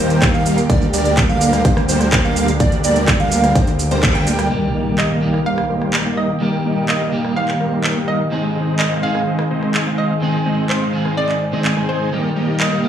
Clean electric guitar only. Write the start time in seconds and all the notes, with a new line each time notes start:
4.49 D#3 G3 A#3 G4
5.21 D#3 G3 A#3 G4
6.40 D#3 G3 A#3 G4
7.12 D#3 G3 A#3 G4
8.30 G#2 D#3 G#3 C4 G#4
9.02 G#2 D#3 G#3 C4 G#4
10.21 G#2 D#3 G#3 C4 G#4
10.92 G#2 D#3 G#3 C4 G#4
11.52 G#2 D#3 G#3 C4 G#4
12.11 D#3 G3 A#3 G4
12.83 D#3 G3 A#3 G4